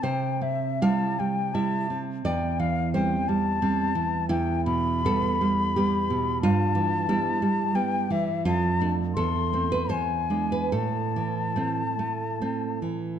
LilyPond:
<<
  \new Staff \with { instrumentName = "Flute" } { \time 3/4 \key a \minor \tempo 4 = 85 g''8 e''8 a''8 g''8 a''8 r8 | g''8 f''8 g''8 a''4. | g''8 b''2~ b''8 | a''2 g''8 e''8 |
a''8 r8 c'''4 gis''4 | a''2~ a''8 r8 | }
  \new Staff \with { instrumentName = "Nylon-string guitar" } { \time 3/4 \key a \minor << { c''4 f''4 e''4 | d''4 c''4. r8 | e'4 a'4 g'4 | f'4 e'4. r8 |
f'4 a'8. b'16 c''8. b'16 | a'2~ a'8 r8 | } \\ { c8 c'8 <g e'>8 g8 <g e'>8 c'8 | e,8 e8 <g c'>8 g8 <g c'>8 e8 | e,8 b,8 <g b>8 g8 <g b>8 b,8 | g,8 e8 <g b>8 g8 <g b>8 e8 |
f,8 <a d'>8 e,8 <a c'>8 e,8 <gis d'>8 | a,8 e8 <a c'>8 a8 <a c'>8 e8 | } >> }
>>